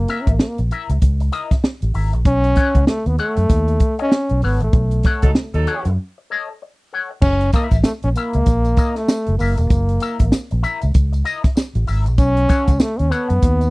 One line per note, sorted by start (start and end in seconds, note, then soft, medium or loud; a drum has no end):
0.00 0.23 A#3 medium
0.08 0.31 E4 medium
0.08 0.31 A#4 medium
0.08 0.31 E5 medium
0.08 snare soft
0.08 closed hi-hat medium
0.22 0.32 C#4 medium
0.27 0.38 A1 medium
0.27 0.40 A#3 medium
0.27 kick medium
0.27 closed hi-hat medium
0.38 0.49 A3 medium
0.38 muted clean electric guitar stroke soft
0.38 snare loud
0.48 0.58 A#3 medium
0.58 0.69 A#1 medium
0.58 muted clean electric guitar stroke soft
0.58 closed hi-hat soft
0.71 0.93 E4 medium
0.71 0.90 A#4 medium
0.71 0.90 E5 medium
0.71 closed hi-hat medium
0.90 1.00 C#2 medium
0.90 muted clean electric guitar stroke soft
0.90 closed hi-hat medium
1.02 1.29 C#2 medium
1.02 kick medium
1.02 closed hi-hat medium
1.20 muted clean electric guitar stroke medium
1.20 closed hi-hat soft
1.32 1.54 E4 medium
1.32 1.51 A#4 medium
1.32 1.51 D#5 loud
1.32 closed hi-hat medium
1.51 muted clean electric guitar stroke soft
1.51 kick medium
1.51 snare soft
1.51 closed hi-hat soft
1.64 muted clean electric guitar stroke soft
1.64 snare loud
1.82 1.93 A1 medium
1.82 closed hi-hat soft
1.94 2.14 G#1 medium
1.94 2.13 E4 medium
1.94 2.13 A#4 medium
1.94 2.13 E5 medium
1.94 open hi-hat medium
2.13 2.24 A#1 medium
2.13 muted clean electric guitar stroke soft
2.13 closed hi-hat soft
2.25 2.52 B1 loud
2.25 2.84 C#4 loud
2.25 kick loud
2.25 closed hi-hat medium
2.44 closed hi-hat soft
2.55 2.78 A4 medium
2.55 2.79 C#5 medium
2.55 2.79 F#5 medium
2.55 kick medium
2.55 snare soft
2.55 closed hi-hat medium
2.75 2.86 C#2 medium
2.75 kick medium
2.75 closed hi-hat medium
2.87 3.08 A3 medium
2.87 muted clean electric guitar stroke medium
2.87 snare loud
3.06 3.17 D#2 medium
3.06 3.19 B3 medium
3.06 muted clean electric guitar stroke soft
3.06 closed hi-hat soft
3.18 3.96 A3 loud
3.18 3.41 A4 medium
3.18 3.37 C#5 medium
3.18 3.36 F#5 medium
3.18 closed hi-hat medium
3.37 3.48 F#2 medium
3.37 muted clean electric guitar stroke medium
3.37 closed hi-hat medium
3.49 3.77 D#2 loud
3.49 muted clean electric guitar stroke medium
3.49 kick medium
3.49 closed hi-hat medium
3.68 muted clean electric guitar stroke soft
3.68 closed hi-hat medium
3.80 kick loud
3.80 closed hi-hat medium
3.99 4.41 C#4 loud
3.99 4.10 A4 medium
3.99 4.11 C#5 medium
3.99 4.11 D#5 medium
3.99 closed hi-hat soft
4.11 muted clean electric guitar stroke soft
4.11 snare loud
4.29 4.42 B1 medium
4.29 closed hi-hat soft
4.42 4.59 G#1 medium
4.42 4.61 B3 medium
4.42 4.62 A4 medium
4.42 4.61 C#5 medium
4.42 4.61 F#5 medium
4.42 open hi-hat medium
4.60 4.72 A1 medium
4.60 5.52 A3 medium
4.60 muted clean electric guitar stroke medium
4.60 closed hi-hat medium
4.73 5.00 B1 loud
4.73 kick loud
4.73 closed hi-hat medium
4.91 closed hi-hat medium
5.03 5.27 A4 medium
5.03 5.27 C#5 medium
5.03 5.28 F#5 medium
5.03 kick loud
5.03 snare soft
5.03 closed hi-hat medium
5.22 5.34 C#2 medium
5.22 5.31 F#3 loud
5.22 5.31 D#4 medium
5.22 5.31 A4 loud
5.22 kick medium
5.22 closed hi-hat medium
5.35 muted clean electric guitar stroke soft
5.35 snare loud
5.54 5.65 D#2 medium
5.54 5.91 F#3 medium
5.54 5.91 D#4 medium
5.54 5.91 A4 loud
5.54 muted clean electric guitar stroke soft
5.54 closed hi-hat soft
5.66 5.89 A4 medium
5.66 5.86 C#5 medium
5.66 5.85 F#5 medium
5.66 closed hi-hat medium
5.85 5.96 F#2 medium
5.85 muted clean electric guitar stroke soft
5.85 closed hi-hat medium
6.18 muted clean electric guitar stroke soft
6.30 6.52 A4 medium
6.30 6.49 C#5 medium
6.30 6.48 D#5 medium
6.49 muted clean electric guitar stroke medium
6.62 muted clean electric guitar stroke soft
6.93 7.11 A4 medium
6.93 7.11 C#5 medium
6.93 7.10 F#5 medium
7.11 muted clean electric guitar stroke soft
7.22 7.49 F#1 loud
7.22 7.51 C#4 loud
7.22 kick loud
7.22 crash loud
7.22 tambourine soft
7.41 closed hi-hat medium
7.53 7.67 A#3 medium
7.53 7.76 E4 medium
7.53 7.76 A#4 medium
7.53 7.76 E5 medium
7.53 kick loud
7.53 snare soft
7.53 closed hi-hat medium
7.53 tambourine medium
7.71 7.82 A1 medium
7.71 kick medium
7.71 closed hi-hat medium
7.71 tambourine soft
7.84 7.93 A3 medium
7.84 muted clean electric guitar stroke medium
7.84 snare loud
7.84 tambourine medium
8.03 8.14 A#1 medium
8.03 8.09 C#4 medium
8.03 muted clean electric guitar stroke soft
8.03 closed hi-hat soft
8.15 8.97 A#3 loud
8.15 8.38 E4 medium
8.15 8.35 A#4 medium
8.15 8.36 E5 medium
8.15 closed hi-hat medium
8.15 tambourine soft
8.33 8.45 C#2 medium
8.33 muted clean electric guitar stroke soft
8.33 closed hi-hat medium
8.46 8.73 A#1 medium
8.46 kick medium
8.46 closed hi-hat medium
8.46 tambourine medium
8.65 muted clean electric guitar stroke soft
8.65 closed hi-hat soft
8.65 tambourine soft
8.77 9.00 E4 medium
8.77 8.97 A#4 medium
8.77 8.96 D#5 medium
8.77 kick loud
8.77 closed hi-hat medium
8.77 tambourine medium
8.95 9.38 A3 loud
8.95 muted clean electric guitar stroke soft
8.95 snare soft
8.95 closed hi-hat soft
9.08 muted clean electric guitar stroke soft
9.08 snare loud
9.08 tambourine medium
9.27 9.38 F#1 loud
9.27 closed hi-hat soft
9.38 9.56 F#1 medium
9.38 9.56 A#3 medium
9.38 9.58 E4 medium
9.38 9.58 A#4 medium
9.38 9.58 E5 medium
9.38 open hi-hat medium
9.38 tambourine medium
9.57 9.69 E1 medium
9.57 10.47 A#3 medium
9.57 muted clean electric guitar stroke soft
9.57 closed hi-hat medium
9.57 tambourine soft
9.70 9.97 F#1 loud
9.70 kick loud
9.70 closed hi-hat medium
9.70 tambourine medium
9.89 closed hi-hat medium
10.00 10.23 E4 medium
10.00 10.24 A#4 loud
10.00 10.24 E5 loud
10.00 closed hi-hat medium
10.00 tambourine medium
10.19 10.31 A1 medium
10.19 kick medium
10.19 closed hi-hat medium
10.32 muted clean electric guitar stroke soft
10.32 snare loud
10.32 tambourine medium
10.51 10.62 A#1 medium
10.51 muted clean electric guitar stroke soft
10.51 closed hi-hat soft
10.63 10.85 E4 medium
10.63 10.82 A#4 loud
10.63 10.81 E5 loud
10.63 closed hi-hat medium
10.63 tambourine medium
10.82 10.93 C#2 medium
10.82 muted clean electric guitar stroke soft
10.82 closed hi-hat medium
10.82 tambourine soft
10.94 11.21 C#2 loud
10.94 kick loud
10.94 closed hi-hat medium
10.94 tambourine medium
11.12 muted clean electric guitar stroke medium
11.12 closed hi-hat soft
11.12 tambourine soft
11.24 11.47 E4 medium
11.24 11.43 A#4 medium
11.24 11.42 D#5 loud
11.24 closed hi-hat medium
11.24 tambourine medium
11.43 muted clean electric guitar stroke soft
11.43 kick medium
11.43 snare soft
11.43 closed hi-hat soft
11.56 muted clean electric guitar stroke soft
11.56 snare loud
11.56 tambourine loud
11.75 11.86 A1 loud
11.75 closed hi-hat soft
11.87 12.08 G#1 medium
11.87 12.06 E4 medium
11.87 12.05 A#4 medium
11.87 12.05 E5 medium
11.87 open hi-hat medium
11.87 tambourine medium
12.06 12.18 A#1 medium
12.06 muted clean electric guitar stroke soft
12.06 closed hi-hat medium
12.06 tambourine soft
12.18 12.45 B1 loud
12.18 12.82 C#4 loud
12.18 kick loud
12.18 closed hi-hat medium
12.18 tambourine medium
12.37 closed hi-hat medium
12.48 12.71 A4 medium
12.48 12.71 C#5 loud
12.48 12.71 F#5 medium
12.48 kick loud
12.48 snare soft
12.48 closed hi-hat medium
12.48 tambourine medium
12.68 12.78 C#2 medium
12.68 kick medium
12.68 closed hi-hat medium
12.68 tambourine soft
12.80 13.00 A3 loud
12.80 muted clean electric guitar stroke soft
12.80 snare loud
12.80 tambourine loud
12.98 13.10 D#2 medium
12.98 13.13 C#4 loud
12.98 muted clean electric guitar stroke medium
12.98 closed hi-hat soft
13.11 13.70 B3 loud
13.11 13.33 A4 medium
13.11 13.29 C#5 medium
13.11 13.29 F#5 loud
13.11 closed hi-hat medium
13.11 tambourine medium
13.29 13.41 F#2 medium
13.29 muted clean electric guitar stroke medium
13.29 closed hi-hat medium
13.42 13.69 D#2 loud
13.42 kick medium
13.42 closed hi-hat medium
13.42 tambourine medium
13.60 muted clean electric guitar stroke soft
13.60 closed hi-hat soft
13.60 tambourine soft